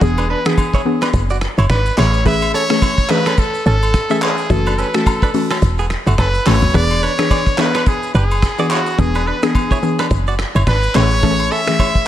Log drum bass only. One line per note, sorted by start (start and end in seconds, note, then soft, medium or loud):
0.01 0.35 E1 loud
1.14 1.47 F#1 medium
1.58 1.67 F#1 loud
1.70 1.91 G#1 loud
1.98 2.53 A1 loud
3.66 4.00 G#1 loud
4.50 4.84 F#1 loud
5.62 5.96 E1 loud
6.06 6.15 F#1 medium
6.18 6.40 F#1 medium
6.46 6.68 G#1 loud
6.74 7.08 E1 loud
8.14 8.48 F#1 loud
8.99 9.32 E1 loud
10.11 10.44 F#1 medium
10.55 10.64 F#1 loud
10.67 10.88 G#1 loud
10.95 11.50 A1 loud